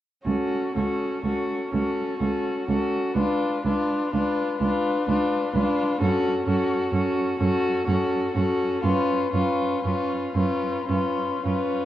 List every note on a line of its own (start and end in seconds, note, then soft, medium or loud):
0.25 0.34 C#2 soft
0.25 0.74 C#4 soft
0.25 0.74 F#4 soft
0.25 0.74 A4 soft
0.74 0.84 C#2 soft
0.74 1.23 C#4 soft
0.74 1.24 F#4 soft
0.74 1.23 A4 soft
1.24 1.32 C#2 soft
1.24 1.71 C#4 soft
1.24 1.73 F#4 soft
1.24 1.72 A4 soft
1.71 1.81 C#2 soft
1.71 2.20 C#4 soft
1.71 2.21 F#4 soft
1.71 2.19 A4 soft
2.20 2.29 C#2 soft
2.20 2.68 C#4 soft
2.20 2.69 F#4 soft
2.20 2.68 A4 soft
2.69 2.77 C#2 soft
2.69 3.17 C#4 soft
2.69 3.16 F#4 soft
2.69 3.15 A4 soft
3.16 3.24 C#2 soft
3.16 3.65 D4 soft
3.16 3.65 F4 soft
3.16 3.65 B4 soft
3.65 3.73 C#2 soft
3.65 4.13 D4 soft
3.65 4.13 F4 soft
3.65 4.13 B4 soft
4.14 4.22 C#2 soft
4.14 4.60 D4 soft
4.14 4.60 F4 soft
4.14 4.60 B4 soft
4.61 4.69 C#2 soft
4.61 5.07 D4 soft
4.61 5.07 F4 soft
4.61 5.06 B4 soft
5.07 5.16 C#2 soft
5.07 5.54 D4 soft
5.07 5.54 F4 soft
5.07 5.53 B4 soft
5.53 5.62 C#2 soft
5.53 6.00 D4 soft
5.53 6.00 F4 soft
5.53 5.99 B4 soft
6.00 6.09 F#2 soft
6.00 6.46 C#4 soft
6.00 6.46 F#4 soft
6.00 6.46 A4 soft
6.46 6.55 F#2 soft
6.46 6.92 C#4 soft
6.46 6.94 F#4 soft
6.46 6.92 A4 soft
6.93 7.01 F#2 soft
6.93 7.39 C#4 soft
6.93 7.40 F#4 soft
6.93 7.40 A4 soft
7.39 7.48 F#2 medium
7.39 7.87 C#4 soft
7.39 7.87 F#4 soft
7.39 7.87 A4 soft
7.87 7.95 F#2 soft
7.87 8.33 C#4 soft
7.87 8.34 F#4 soft
7.87 8.36 A4 soft
8.34 8.44 F#2 soft
8.34 8.83 C#4 soft
8.34 8.83 F#4 soft
8.34 8.85 A4 soft
8.84 8.92 F#2 soft
8.84 9.33 C#4 soft
8.84 9.33 F4 soft
8.84 9.34 B4 soft
9.33 9.42 F#2 soft
9.33 9.84 C#4 soft
9.33 9.84 F4 soft
9.33 9.85 B4 soft
9.85 9.93 F#2 soft
9.85 10.35 C#4 soft
9.85 10.36 F4 soft
9.85 10.37 B4 soft
10.35 10.44 F#2 soft
10.35 10.87 C#4 soft
10.35 10.89 F4 soft
10.35 10.89 B4 soft
10.87 10.97 F#2 soft
10.87 11.43 C#4 soft
10.87 11.44 F4 soft
10.87 11.45 B4 soft
11.44 11.53 F#2 soft
11.44 11.85 C#4 soft
11.44 11.85 F4 soft
11.44 11.85 B4 soft